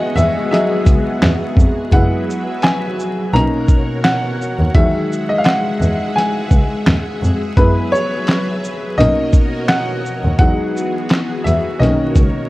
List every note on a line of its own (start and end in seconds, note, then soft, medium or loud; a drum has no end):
0.00 1.89 D#3 medium
0.00 0.51 G#3 medium
0.00 1.89 G#3 medium
0.00 1.89 B3 medium
0.00 1.88 F#4 medium
0.00 8.94 F#4 medium
0.00 3.29 G#4 medium
0.00 0.17 D#5 loud
0.00 0.16 E5 loud
0.00 1.88 F#5 medium
0.00 1.94 G#5 loud
0.16 0.24 E2 loud
0.16 0.50 E5 medium
0.16 closed hi-hat soft
0.16 shaker soft
0.51 0.83 F#3 soft
0.51 0.84 G#3 soft
0.51 0.84 D#5 medium
0.51 1.53 E5 medium
0.51 snare soft
0.51 closed hi-hat medium
0.86 0.94 C#2 medium
0.86 kick medium
0.86 closed hi-hat medium
0.86 shaker medium
1.22 1.30 E2 medium
1.22 snare loud
1.22 clap medium
1.22 closed hi-hat medium
1.57 1.65 F2 medium
1.57 kick medium
1.57 shaker soft
1.92 2.00 F#1 loud
1.92 3.32 F#3 medium
1.92 2.95 G#3 medium
1.92 2.95 B3 soft
1.92 2.95 E4 medium
1.92 3.32 B4 medium
1.92 3.32 E5 medium
1.92 2.65 F#5 medium
1.92 kick loud
1.92 closed hi-hat medium
2.30 shaker soft
2.62 3.36 G#5 medium
2.62 snare loud
2.62 clap medium
2.62 closed hi-hat medium
2.99 shaker soft
3.33 3.42 B1 loud
3.33 4.74 B2 medium
3.33 3.82 A#3 medium
3.33 3.82 C#4 medium
3.33 3.83 D#4 medium
3.33 4.74 A#4 medium
3.33 4.74 C#5 medium
3.33 7.53 F#5 loud
3.33 4.06 A#5 loud
3.33 closed hi-hat medium
3.68 kick loud
3.68 shaker medium
4.04 4.77 F#5 loud
4.04 snare loud
4.04 clap medium
4.04 closed hi-hat medium
4.42 shaker soft
4.59 4.67 D#2 medium
4.74 4.83 E2 loud
4.74 5.77 D#3 medium
4.74 5.77 F#3 medium
4.74 7.54 G#3 medium
4.74 5.77 G#3 medium
4.74 8.94 G#4 medium
4.74 5.31 E5 loud
4.74 7.54 E5 medium
4.74 kick loud
4.74 closed hi-hat medium
5.13 shaker soft
5.29 5.39 D#5 medium
5.38 5.45 F5 medium
5.44 6.18 F#5 medium
5.44 snare loud
5.44 clap medium
5.44 closed hi-hat medium
5.81 5.89 E2 medium
5.81 shaker medium
6.16 7.18 G#5 medium
6.16 snare soft
6.16 closed hi-hat medium
6.51 6.59 C#2 medium
6.51 kick medium
6.51 shaker medium
6.87 6.95 D#2 medium
6.87 snare loud
6.87 clap loud
6.87 closed hi-hat medium
7.22 7.30 F2 medium
7.22 shaker soft
7.57 7.65 F#2 loud
7.57 8.97 F#3 medium
7.57 8.95 G#3 medium
7.57 8.95 B3 medium
7.57 8.95 E4 medium
7.57 7.93 B4 loud
7.57 8.97 B4 medium
7.57 8.97 E5 medium
7.57 kick loud
7.57 closed hi-hat medium
7.92 8.59 C#5 loud
7.92 shaker soft
8.27 snare loud
8.27 clap medium
8.27 closed hi-hat medium
8.64 shaker soft
8.98 9.07 B1 loud
8.98 10.38 B2 medium
8.98 9.47 A#3 medium
8.98 9.47 C#4 medium
8.98 9.47 D#4 medium
8.98 10.38 F#4 medium
8.98 10.38 A#4 medium
8.98 10.38 C#5 medium
8.98 9.71 D#5 loud
8.98 10.38 D#5 medium
8.98 closed hi-hat medium
9.33 kick medium
9.33 shaker medium
9.68 10.37 F#5 loud
9.68 snare loud
9.68 clap loud
9.68 closed hi-hat medium
10.06 shaker soft
10.24 10.32 D#2 medium
10.39 10.47 E2 loud
10.39 11.79 E3 medium
10.39 10.88 F#3 medium
10.39 10.89 G#3 medium
10.39 11.79 B3 medium
10.39 10.89 D#4 medium
10.39 12.49 F#4 medium
10.39 11.79 G#4 medium
10.39 11.48 F#5 loud
10.39 kick loud
10.39 closed hi-hat medium
10.77 shaker soft
11.09 snare loud
11.09 clap medium
11.09 closed hi-hat medium
11.44 11.53 E2 medium
11.44 11.81 E5 medium
11.44 closed hi-hat soft
11.44 shaker soft
11.79 11.89 B1 loud
11.79 12.49 B2 medium
11.79 12.49 D#3 medium
11.79 12.49 A#3 soft
11.79 12.49 C#4 medium
11.79 12.49 A#4 medium
11.79 12.49 C#5 medium
11.79 12.49 D#5 medium
11.79 snare soft
11.79 closed hi-hat medium
12.16 12.24 C#2 medium
12.16 kick medium
12.16 closed hi-hat soft
12.16 shaker medium